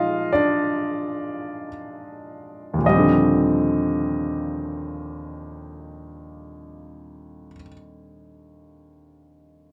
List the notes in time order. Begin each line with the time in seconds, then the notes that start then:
Already playing: A#2 F3 G#3 D#4 F4 D#5 F5
0.33 D4 D5
2.74 D#2
2.79 A#2
2.84 F3 D#5
2.89 G3
2.94 C4
2.99 D3